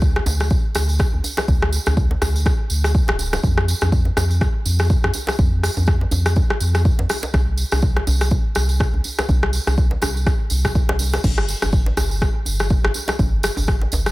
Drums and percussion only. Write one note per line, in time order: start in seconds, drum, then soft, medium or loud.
0.02 kick loud
0.02 tambourine soft
0.16 cross-stick medium
0.16 djembe slap medium
0.26 tambourine medium
0.26 djembe slap medium
0.26 djembe bass medium
0.40 cross-stick medium
0.40 tambourine soft
0.50 kick loud
0.50 tambourine soft
0.75 cross-stick medium
0.75 tambourine medium
0.75 djembe tone medium
0.89 tambourine medium
1.00 kick loud
1.00 cross-stick medium
1.00 tambourine soft
1.13 djembe tone medium
1.24 tambourine medium
1.24 djembe tone medium
1.37 cross-stick medium
1.37 tambourine medium
1.37 djembe slap loud
1.48 kick loud
1.48 tambourine soft
1.48 djembe bass medium
1.62 cross-stick medium
1.73 tambourine loud
1.86 cross-stick medium
1.86 tambourine medium
1.86 djembe tone loud
1.97 kick loud
1.97 tambourine soft
2.11 djembe slap medium
2.22 cross-stick medium
2.22 tambourine medium
2.22 djembe slap medium
2.22 djembe bass medium
2.36 tambourine medium
2.46 kick loud
2.46 cross-stick medium
2.46 djembe tone medium
2.70 tambourine medium
2.84 cross-stick medium
2.84 tambourine medium
2.95 kick loud
2.95 tambourine soft
3.08 cross-stick loud
3.08 djembe slap medium
3.19 tambourine medium
3.19 djembe tone medium
3.33 cross-stick medium
3.33 tambourine soft
3.33 djembe slap loud
3.43 kick loud
3.43 tambourine soft
3.43 djembe bass medium
3.58 cross-stick medium
3.68 tambourine medium
3.81 cross-stick medium
3.81 tambourine medium
3.81 djembe tone medium
3.92 kick loud
3.92 tambourine soft
4.05 djembe slap medium
4.17 cross-stick medium
4.17 tambourine medium
4.17 djembe slap medium
4.17 djembe bass medium
4.31 tambourine soft
4.41 kick loud
4.41 cross-stick medium
4.41 tambourine soft
4.65 tambourine medium
4.65 djembe tone medium
4.79 cross-stick medium
4.79 tambourine soft
4.90 kick loud
4.90 tambourine soft
5.04 cross-stick medium
5.04 djembe tone medium
5.13 tambourine loud
5.13 djembe tone medium
5.27 cross-stick medium
5.27 tambourine soft
5.27 djembe slap medium
5.39 kick loud
5.39 tambourine soft
5.39 djembe bass medium
5.63 cross-stick medium
5.63 tambourine medium
5.77 tambourine soft
5.77 djembe tone medium
5.87 kick loud
5.87 cross-stick medium
5.87 tambourine soft
6.01 djembe slap medium
6.11 tambourine medium
6.11 djembe slap medium
6.11 djembe bass medium
6.26 cross-stick medium
6.26 tambourine medium
6.36 kick loud
6.36 tambourine soft
6.36 djembe tone medium
6.50 cross-stick medium
6.61 tambourine loud
6.75 cross-stick medium
6.75 tambourine soft
6.85 kick loud
6.85 tambourine soft
6.99 djembe slap loud
7.09 cross-stick medium
7.09 tambourine medium
7.09 djembe tone medium
7.23 tambourine soft
7.23 djembe slap loud
7.34 kick loud
7.34 cross-stick medium
7.34 tambourine soft
7.34 djembe bass medium
7.57 tambourine medium
7.71 cross-stick medium
7.71 tambourine medium
7.71 djembe tone medium
7.82 kick loud
7.82 tambourine soft
7.97 cross-stick medium
7.97 djembe slap medium
8.07 tambourine medium
8.07 djembe slap medium
8.07 djembe bass medium
8.21 cross-stick medium
8.21 tambourine medium
8.31 kick loud
8.31 tambourine soft
8.55 cross-stick medium
8.55 tambourine medium
8.55 djembe tone medium
8.69 tambourine soft
8.80 kick loud
8.80 cross-stick medium
8.80 tambourine soft
8.94 djembe tone medium
9.04 tambourine medium
9.04 djembe tone medium
9.18 cross-stick medium
9.18 tambourine soft
9.18 djembe slap loud
9.29 kick loud
9.29 tambourine soft
9.29 djembe bass loud
9.43 cross-stick medium
9.53 tambourine medium
9.67 cross-stick medium
9.67 tambourine soft
9.67 djembe tone medium
9.78 kick loud
9.78 tambourine soft
9.91 djembe slap medium
10.02 cross-stick medium
10.02 tambourine medium
10.02 djembe slap medium
10.02 djembe bass loud
10.17 tambourine soft
10.26 kick loud
10.26 cross-stick medium
10.26 tambourine soft
10.26 djembe tone medium
10.50 tambourine medium
10.50 djembe tone medium
10.65 kick medium
10.65 cross-stick medium
10.65 tambourine soft
10.75 kick loud
10.75 tambourine soft
10.89 cross-stick medium
10.89 djembe slap loud
10.99 tambourine medium
10.99 djembe tone medium
11.13 cross-stick medium
11.13 tambourine soft
11.13 djembe slap loud
11.24 kick loud
11.24 crash medium
11.24 tambourine soft
11.24 djembe bass medium
11.38 cross-stick medium
11.48 tambourine medium
11.62 cross-stick medium
11.62 tambourine medium
11.62 djembe tone medium
11.72 kick loud
11.72 tambourine soft
11.86 djembe slap medium
11.97 cross-stick medium
11.97 tambourine medium
11.97 djembe slap medium
11.97 djembe bass medium
12.11 tambourine medium
12.22 kick loud
12.22 cross-stick medium
12.22 tambourine soft
12.46 tambourine loud
12.46 djembe tone medium
12.59 cross-stick medium
12.59 tambourine soft
12.70 kick loud
12.70 tambourine soft
12.84 cross-stick loud
12.84 djembe tone medium
12.94 tambourine loud
12.94 djembe tone medium
13.08 cross-stick medium
13.08 tambourine soft
13.08 djembe slap loud
13.19 kick loud
13.19 tambourine soft
13.19 djembe bass medium
13.43 cross-stick loud
13.43 tambourine medium
13.57 tambourine medium
13.57 djembe tone loud
13.68 kick loud
13.68 cross-stick medium
13.81 djembe slap medium
13.92 tambourine medium
13.92 djembe slap medium
13.92 djembe bass medium
14.06 cross-stick medium
14.06 tambourine medium